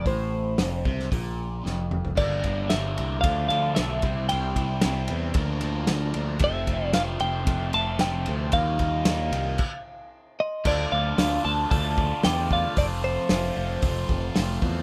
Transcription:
<<
  \new Staff \with { instrumentName = "Glockenspiel" } { \time 4/4 \key f \major \tempo 4 = 113 r1 | r1 | r1 | r1 |
r2. r8 c'''8 | a''8 d'''4 f'''8 f'''4 d'''8 d'''8 | a''8 r2. r8 | }
  \new Staff \with { instrumentName = "Clean electric guitar" } { \time 4/4 \key f \major c''2 r2 | d''4 e''4 f''8 f''8 e''4 | g''2. r4 | e''4 f''8 g''4 a''8 g''4 |
f''2. r8 ees''8 | d''8 f''4 a''8 a''4 g''8 f''8 | d''8 c''2. r8 | }
  \new Staff \with { instrumentName = "Tonewheel organ" } { \time 4/4 \key f \major << { r1 | <g' bes' bes''>2 <f' a' a''>4. <e' c'' g''>8~ | <e' c'' g''>2 <f' bes' bes''>2 | <f' c'' a''>1 |
<f' bes' g''>2 r2 | <f' a' a''>1~ | <f' a' a''>1 | } \\ { r1 | d''2 d''4. d''8~ | d''1 | e''1 |
ees''2 r2 | d''1 | c''1 | } >> }
  \new Staff \with { instrumentName = "Overdriven electric guitar" } { \time 4/4 \key f \major a,4 f,8 c8 bes,4 f,4 | <g, d g bes d'>8 <g bes d'>8 <g, d g bes d'>8 <g bes d'>8 <d f a d'>8 <d f a d'>8 <d f a d'>8 <c g c' e'>8 | <c g c' e'>8 <g c' e'>8 <c g c' e'>8 <g c' e'>8 <d f bes d'>8 <d f bes d'>8 <d f bes d'>8 <f bes d'>8 | <f, c f a c'>8 <f a c'>8 <f, c f a c'>8 <f a c'>8 <c f a c'>8 <f, c f a c'>8 <c f a c'>8 <f a c'>8 |
<ees g bes ees'>8 <g bes ees'>8 <ees g bes ees'>8 <g bes ees'>8 r2 | <d a d' f'>4 <d a d' f'>8 <d a d' f'>8 <d a d' f'>4 <d a d' f'>8 <d a d' f'>8 | <f a c' f'>4 <f a c' f'>8 <f a c' f'>8 <f a c' f'>4 <f a c' f'>8 <f a c' f'>8 | }
  \new Staff \with { instrumentName = "Picked electric bass" } { \clef bass \time 4/4 \key f \major a,,4 f,,8 c,8 bes,,4 f,,4 | g,,8 g,,8 g,,8 c,8 d,8 d,8 b,,8 c,8 | c,8 c,8 c,8 e,8 d,8 d,8 d,8 d,8 | f,,8 f,,8 f,,8 f,,8 f,,8 f,,8 f,,8 d,8 |
ees,8 ees,8 ees,8 c,8 r2 | d,8 d,8 d,8 d,8 d,4 e,4 | f,,4 f,,8 f,,8 f,,8 f,,8 f,,8 e,8 | }
  \new DrumStaff \with { instrumentName = "Drums" } \drummode { \time 4/4 <hho bd>4 <hho sn>8 bd16 sn16 <hho bd>4 sn8 toml16 tomfh16 | <cymc bd>8 <bd cymr>8 <cymr sn>8 cymr8 <bd cymr>8 cymr8 <cymr sn>8 <bd cymr>8 | cymr8 <bd cymr>8 <cymr sn>8 cymr8 <bd cymr>8 cymr8 <cymr sn>8 cymr8 | <bd cymr>8 <bd cymr>8 <cymr sn>8 cymr8 <bd cymr>8 cymr8 <cymr sn>8 cymr8 |
<bd cymr>8 <bd cymr>8 <cymr sn>8 cymr8 <cymc bd>4 r4 | <cymc bd>4 <hho sn>4 <hho bd>8 bd8 <hho sn>8 bd8 | <hho bd>4 <hho sn>4 <hho bd>8 bd8 <hho sn>8 bd8 | }
>>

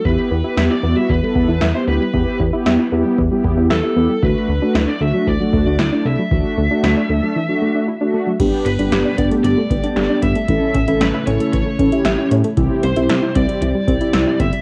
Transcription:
<<
  \new Staff \with { instrumentName = "Lead electric guitar" } { \time 4/4 \key e \minor \tempo 4 = 115 b'4 b'16 d''8 e''16 b'4 b'16 c''16 b'8~ | b'8 r2 r8 a'4 | b'4 b'16 d''16 e''8 d''4 d''8 e''8~ | e''2. r4 |
r8 b'4 d''8 d''4. e''8~ | e''8 e''8 b'8 cis''8 cis''4. r8 | r8 c''4 d''8 d''4. e''8 | }
  \new Staff \with { instrumentName = "Analog polysynth" } { \time 4/4 \key e \minor <b e' g'>8 r16 <b e' g'>8 r16 <b e' fis'>8 r16 <b e' a'>8. r16 <b e' g'>8 r16 | <b e' g'>8 r16 <b e' g'>8 r16 <b e' g'>8 r16 <b e' g'>8. r16 <b e' g'>8 r16 | <a d' fis'>8 r16 <a d' fis'>8 r16 <a d' fis'>8 r16 <a d' fis'>8. r16 <a d' e'>8 r16 | <a d' fis'>8 r16 <a d' fis'>8 r16 <a d' a'>8 r16 <a d' fis'>8. r16 <a d' fis'>8 r16 |
<b d' g'>8 r16 <b d' g'>8 r16 <b d' g'>8. r16 <b d' g'>16 <b d' g'>4 r16 | <cis' e' a'>8 r16 <cis' e' a'>8 r16 <cis' e' a'>8. r16 <cis' e' a'>16 <cis' e' g'>4 r16 | <c' e' g'>8 r16 <c' e' g'>8 r16 <c' e' g'>8. r16 <c' e' g'>16 <c' e' g'>4 r16 | }
  \new Staff \with { instrumentName = "Synth arpeggio sound" } { \time 4/4 \key e \minor e16 r16 b16 e'16 e''16 e'16 b16 g16 e16 g16 b16 e'16 e''16 e'16 b16 g16 | e16 r16 b16 e'16 e''16 e'16 b16 g16 e16 g16 b16 e'16 e''16 e'16 b16 g16 | e16 r16 a16 d'16 e'16 d'16 a16 fis16 e16 fis16 a16 d'16 e'16 d'16 a16 fis16 | e16 r16 a16 d'16 e'16 d'16 a16 fis16 e16 fis16 a16 d'16 e'16 d'16 a16 fis16 |
g16 r16 b16 d'16 g'16 d'16 b16 a16 g16 a16 b16 d'16 g'16 d'16 b16 a16 | e16 r16 cis'16 e'16 e''16 e'16 cis'16 a16 e16 a16 cis'16 e'16 e''16 e'16 cis'16 a16 | e16 r16 c'16 e'16 e''16 e'16 c'16 g16 e16 g16 c'16 e'16 e''16 e'16 c'16 g16 | }
  \new Staff \with { instrumentName = "String machine" } { \clef bass \time 4/4 \key e \minor << { r1 | r1 | r1 | r1 |
a'1 | e'1~ | e'1 | } \\ { r1 | r1 | r1 | r1 |
<g b>1 | <cis a>1 | <c g>1 | } >> }
  \new Staff \with { instrumentName = "Analog synth bass" } { \clef bass \time 4/4 \key e \minor e,16 r16 e,16 r16 e,16 r16 e,16 r16 e,16 r16 e,16 e,16 e,16 r16 d,16 r16 | e,16 r16 e,16 r16 e,16 r16 e,16 r16 e,16 r16 e,16 e,16 e,16 r16 e,16 r16 | d,16 r16 d,16 r16 d,16 r16 d,16 r16 d,16 r16 d,16 d,16 d,16 r16 c,16 r16 | d,16 r16 d,16 r16 d,16 r16 d,16 r2 r16 |
g,,16 r16 g,,16 g,,16 g,,16 r16 g,,16 r16 g,,16 r16 g,,16 r16 g,,16 r16 g,,16 r16 | a,,16 r16 a,,16 a,,16 a,,16 r16 a,,16 r16 a,,16 r16 a,,16 r16 a,,16 r16 a,16 r16 | c,16 r16 c,16 c,16 c,16 r16 c,16 r16 c,16 r16 c,16 r16 c,16 r16 g,,16 r16 | }
  \new DrumStaff \with { instrumentName = "Drums" } \drummode { \time 4/4 bd4 sn4 bd8 bd8 sn4 | bd8 bd8 sn4 bd8 bd8 sn4 | bd4 sn4 bd8 bd8 sn4 | bd4 sn4 r4 r4 |
<cymc hh bd>8 hh16 hh16 <hh sn>8 <hh bd>16 hh16 hh8 <hh bd>16 hh16 <hh sn>8 <hh bd>16 hh16 | <hh bd>8 <hh bd>16 hh16 <hh sn>8 hh16 hh16 <hh bd>8 <hh bd>16 hh16 <hh sn>8 hh16 hh16 | <hh bd>8 hh16 hh16 <hh sn>8 <hh bd>16 hh16 hh8 <hh bd>16 hh16 <hh sn>8 <hh bd>16 hh16 | }
>>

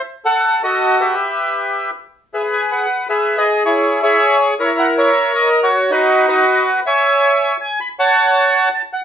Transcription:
\new Staff \with { instrumentName = "Bandoneon" } { \time 3/4 \key e \minor \tempo 4 = 159 << { r8 fis''4 dis''4 e''8~ | e''2 r4 | \key gis \phrygian e''8 gis''8 fis''4 e''8. dis''16~ | dis''8 cis''4 e''4 r8 |
cis''8 fis''8 e''4 dis''8. cis''16~ | cis''8 b'4 dis''4 r8 | gis''2 gis''8 b''8 | a''2 a''8 fis''8 | } \\ { r8 a'4 <fis' a'>4 <g' b'>8~ | <g' b'>2 r4 | <gis' b'>4 b'4 <gis' b'>8. gis'16~ | gis'8 <e' gis'>4 <gis' cis''>4. |
<e' ais'>4 <ais' cis''>4 ais'8. fis'16~ | fis'8 <dis' fis'>4 <fis' b'>4. | <cis'' e''>2 r4 | <cis'' fis''>2 r4 | } >> }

